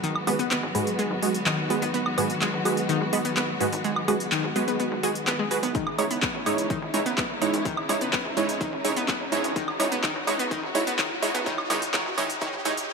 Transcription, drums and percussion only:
0.04 closed hi-hat medium
0.16 high woodblock medium
0.27 open hi-hat loud
0.27 high woodblock medium
0.39 closed hi-hat medium
0.51 clap loud
0.51 closed hi-hat medium
0.75 open hi-hat medium
0.87 closed hi-hat medium
0.99 closed hi-hat medium
1.23 open hi-hat loud
1.34 closed hi-hat medium
1.46 clap loud
1.46 closed hi-hat medium
1.70 open hi-hat medium
1.82 closed hi-hat medium
1.94 closed hi-hat soft
2.06 high woodblock medium
2.18 open hi-hat loud
2.18 high woodblock medium
2.30 closed hi-hat medium
2.42 clap loud
2.42 closed hi-hat medium
2.65 open hi-hat loud
2.65 high woodblock medium
2.77 closed hi-hat medium
2.89 closed hi-hat soft
3.13 open hi-hat loud
3.25 closed hi-hat medium
3.37 clap loud
3.37 closed hi-hat medium
3.61 open hi-hat medium
3.73 closed hi-hat medium
3.84 closed hi-hat medium
3.96 high woodblock medium
4.08 open hi-hat loud
4.08 high woodblock medium
4.20 closed hi-hat medium
4.32 clap loud
4.32 closed hi-hat soft
4.56 open hi-hat medium
4.68 closed hi-hat medium
4.80 closed hi-hat soft
5.03 open hi-hat loud
5.15 closed hi-hat medium
5.27 clap loud
5.27 closed hi-hat medium
5.51 open hi-hat loud
5.63 closed hi-hat medium
5.75 kick loud
5.75 closed hi-hat medium
5.87 high woodblock medium
5.99 open hi-hat loud
5.99 high woodblock medium
6.11 closed hi-hat medium
6.22 kick loud
6.22 clap loud
6.22 closed hi-hat medium
6.46 open hi-hat medium
6.46 high woodblock medium
6.58 closed hi-hat medium
6.70 kick loud
6.70 closed hi-hat medium
6.94 open hi-hat loud
7.06 closed hi-hat medium
7.18 kick loud
7.18 clap loud
7.18 closed hi-hat medium
7.42 open hi-hat medium
7.54 closed hi-hat medium
7.65 kick loud
7.65 closed hi-hat medium
7.77 high woodblock medium
7.89 open hi-hat loud
7.89 high woodblock medium
8.01 closed hi-hat medium
8.13 kick loud
8.13 clap loud
8.13 closed hi-hat medium
8.37 open hi-hat medium
8.49 closed hi-hat medium
8.61 kick loud
8.61 closed hi-hat medium
8.85 open hi-hat loud
8.96 closed hi-hat medium
9.08 kick loud
9.08 clap loud
9.08 closed hi-hat medium
9.32 open hi-hat medium
9.44 closed hi-hat medium
9.56 kick loud
9.56 closed hi-hat medium
9.68 high woodblock medium
9.80 open hi-hat loud
9.80 high woodblock medium
9.92 closed hi-hat medium
10.04 kick loud
10.04 clap loud
10.04 closed hi-hat medium
10.27 open hi-hat medium
10.27 high woodblock medium
10.39 closed hi-hat medium
10.51 kick loud
10.51 closed hi-hat medium
10.75 open hi-hat loud
10.87 closed hi-hat medium
10.99 kick loud
10.99 clap loud
10.99 closed hi-hat medium
11.23 open hi-hat medium
11.35 closed hi-hat medium
11.46 kick loud
11.46 closed hi-hat medium
11.58 high woodblock medium
11.70 open hi-hat loud
11.70 high woodblock medium
11.82 closed hi-hat medium
11.94 kick loud
11.94 clap loud
11.94 closed hi-hat medium
12.18 open hi-hat medium
12.18 high woodblock medium
12.30 closed hi-hat medium
12.41 kick loud
12.41 closed hi-hat medium
12.65 open hi-hat loud
12.77 closed hi-hat medium

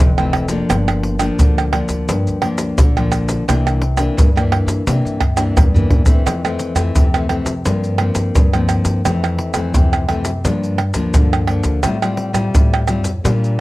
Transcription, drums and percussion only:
0.18 pandeiro soft
0.18 tamborim medium
0.18 maracas soft
0.33 pandeiro medium
0.33 tamborim medium
0.48 pandeiro medium
0.48 maracas medium
0.70 pandeiro medium
0.70 tamborim medium
0.70 maracas medium
0.70 surdo medium
0.88 pandeiro soft
0.88 tamborim medium
0.88 maracas soft
1.03 pandeiro medium
1.19 pandeiro medium
1.19 tamborim medium
1.19 maracas medium
1.39 pandeiro medium
1.39 maracas medium
1.39 surdo loud
1.58 pandeiro soft
1.58 tamborim medium
1.58 maracas soft
1.73 pandeiro medium
1.73 tamborim medium
1.89 pandeiro medium
1.89 maracas medium
2.09 pandeiro medium
2.09 maracas medium
2.09 surdo medium
2.27 pandeiro soft
2.27 maracas soft
2.42 pandeiro medium
2.42 tamborim medium
2.58 pandeiro medium
2.58 maracas medium
2.78 pandeiro medium
2.78 maracas medium
2.78 surdo loud
2.97 pandeiro soft
2.97 tamborim medium
2.97 maracas soft
3.12 pandeiro medium
3.12 tamborim medium
3.12 maracas medium
3.29 pandeiro medium
3.29 maracas medium
3.49 pandeiro medium
3.49 tamborim medium
3.49 maracas medium
3.49 surdo medium
3.67 pandeiro soft
3.67 tamborim medium
3.67 maracas soft
3.82 pandeiro medium
3.97 pandeiro medium
3.97 tamborim medium
3.97 maracas medium
4.18 pandeiro medium
4.18 maracas medium
4.18 surdo loud
4.37 pandeiro soft
4.37 tamborim medium
4.37 maracas soft
4.52 pandeiro medium
4.52 tamborim medium
4.68 pandeiro medium
4.68 maracas medium
4.87 pandeiro medium
4.87 maracas medium
4.87 surdo medium
5.06 pandeiro soft
5.06 maracas soft
5.21 pandeiro medium
5.21 tamborim medium
5.21 surdo medium
5.37 pandeiro medium
5.37 tamborim medium
5.37 maracas medium
5.57 pandeiro medium
5.57 tamborim medium
5.57 maracas medium
5.57 surdo loud
5.76 surdo medium
5.76 pandeiro soft
5.76 maracas soft
5.90 pandeiro medium
5.90 surdo medium
6.06 pandeiro medium
6.06 maracas medium
6.06 surdo loud
6.27 pandeiro medium
6.27 tamborim medium
6.27 maracas medium
6.27 surdo medium
6.45 pandeiro soft
6.45 tamborim medium
6.45 maracas soft
6.59 pandeiro medium
6.59 maracas medium
6.76 pandeiro medium
6.76 tamborim medium
6.76 maracas medium
6.95 pandeiro medium
6.95 maracas medium
6.95 surdo medium
7.14 pandeiro soft
7.14 tamborim medium
7.14 maracas soft
7.29 pandeiro medium
7.29 tamborim medium
7.46 pandeiro medium
7.46 maracas medium
7.65 pandeiro medium
7.65 maracas medium
7.65 surdo medium
7.84 pandeiro soft
7.84 maracas soft
7.98 pandeiro medium
7.98 tamborim medium
8.15 pandeiro medium
8.15 maracas medium
8.35 pandeiro medium
8.35 maracas medium
8.35 surdo loud
8.53 pandeiro soft
8.53 tamborim medium
8.53 maracas soft
8.69 pandeiro medium
8.69 tamborim medium
8.69 maracas medium
8.85 pandeiro medium
8.85 maracas medium
9.05 pandeiro medium
9.05 tamborim medium
9.05 maracas medium
9.05 surdo medium
9.24 pandeiro soft
9.24 tamborim medium
9.24 maracas soft
9.38 pandeiro medium
9.54 pandeiro medium
9.54 tamborim medium
9.54 maracas medium
9.74 pandeiro medium
9.74 maracas medium
9.74 surdo medium
9.93 pandeiro soft
9.93 tamborim medium
9.93 maracas soft
10.09 pandeiro medium
10.09 tamborim medium
10.25 pandeiro medium
10.25 maracas medium
10.45 pandeiro medium
10.45 maracas medium
10.45 surdo medium
10.64 pandeiro soft
10.64 maracas soft
10.78 pandeiro medium
10.78 tamborim medium
10.94 pandeiro medium
10.94 maracas medium
11.14 pandeiro medium
11.14 maracas medium
11.14 surdo loud
11.33 pandeiro soft
11.33 tamborim medium
11.33 maracas soft
11.47 pandeiro medium
11.47 tamborim medium
11.64 pandeiro medium
11.64 maracas medium
11.83 pandeiro medium
11.83 tamborim medium
11.83 maracas medium
11.83 surdo medium
12.02 pandeiro soft
12.02 tamborim medium
12.02 maracas soft
12.17 pandeiro medium
12.34 pandeiro medium
12.34 tamborim medium
12.34 maracas medium
12.54 pandeiro medium
12.54 maracas medium
12.54 surdo loud
12.74 pandeiro soft
12.74 tamborim medium
12.74 maracas soft
12.87 pandeiro medium
12.87 tamborim medium
12.87 maracas medium
13.04 pandeiro medium
13.04 maracas medium
13.25 pandeiro medium
13.25 maracas medium
13.25 surdo medium
13.44 pandeiro soft
13.44 maracas soft

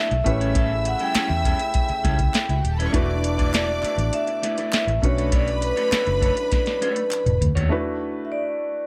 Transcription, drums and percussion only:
0.11 closed hi-hat soft
0.26 kick medium
0.26 closed hi-hat medium
0.41 closed hi-hat soft
0.55 kick loud
0.55 closed hi-hat medium
0.85 closed hi-hat medium
0.99 closed hi-hat soft
1.15 snare loud
1.15 clap medium
1.15 closed hi-hat loud
1.45 kick medium
1.45 closed hi-hat medium
1.59 closed hi-hat medium
1.74 kick medium
1.74 closed hi-hat medium
1.89 closed hi-hat soft
2.05 kick medium
2.05 snare soft
2.05 closed hi-hat medium
2.19 kick medium
2.19 closed hi-hat soft
2.34 snare loud
2.34 clap medium
2.34 closed hi-hat medium
2.49 closed hi-hat soft
2.65 closed hi-hat medium
2.80 closed hi-hat soft
2.94 kick loud
2.94 closed hi-hat medium
3.24 closed hi-hat medium
3.39 kick medium
3.39 closed hi-hat soft
3.54 snare loud
3.54 clap medium
3.54 closed hi-hat loud
3.83 clap medium
3.83 closed hi-hat medium
3.99 closed hi-hat medium
4.13 closed hi-hat medium
4.27 closed hi-hat soft
4.43 snare soft
4.43 closed hi-hat medium
4.58 closed hi-hat soft
4.73 snare loud
4.73 clap medium
4.73 closed hi-hat medium
4.88 closed hi-hat soft
5.03 kick medium
5.03 closed hi-hat medium
5.18 closed hi-hat medium
5.32 kick loud
5.32 closed hi-hat loud
5.48 closed hi-hat soft
5.62 closed hi-hat medium
5.77 closed hi-hat soft
5.92 snare loud
5.92 clap medium
5.92 closed hi-hat loud
6.07 closed hi-hat soft
6.22 kick medium
6.22 closed hi-hat medium
6.37 closed hi-hat soft
6.52 kick medium
6.52 snare medium
6.52 closed hi-hat medium
6.66 snare medium
6.66 closed hi-hat soft
6.82 closed hi-hat medium
6.96 closed hi-hat soft
7.11 clap medium
7.11 closed hi-hat medium
7.26 closed hi-hat soft
7.26 mid tom medium
7.41 closed hi-hat medium
7.41 floor tom medium
7.56 closed hi-hat soft
7.56 floor tom medium

